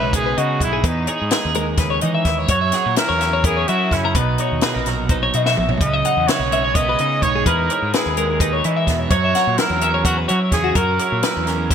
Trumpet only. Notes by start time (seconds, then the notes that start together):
Already playing: B4
0.15 G#4
0.38 F#4
0.63 E4
0.87 D#4
2.50 C#5
2.97 A#4
3.45 G#4
3.68 F#4
3.93 E4
4.17 D#4
5.80 D#5
6.27 C#5
6.74 D#5
7.22 C#5
7.46 A#4
7.93 G#4
9.11 C#5
9.58 A#4
10.05 F#4
10.28 F#4
10.53 G#4
10.77 A#4